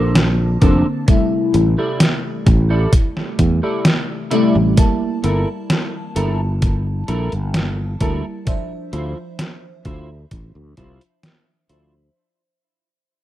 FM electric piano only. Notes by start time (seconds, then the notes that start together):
Already playing: D3 A#3 C4 A5
0.61 D3 A#3 C4 A5
1.07 C3 G3 A3 E4
4.31 C3 G3 A3 E4
4.76 G3 A#3 E4 A5
8.00 G3 A#3 E4 A5
8.45 F3 D4 C5 E5
11.69 F3 D4 C5 E5